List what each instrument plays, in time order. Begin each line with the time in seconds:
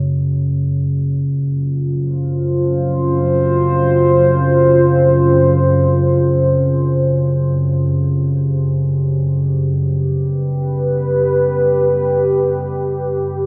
Already playing: synth drone F#2 C#3, analog synth pad A#3
0.02 analog synth pad F#2
1.04 analog synth pad F4
1.98 analog synth pad C5
7.76 analog synth pad G4
9.76 analog synth pad B4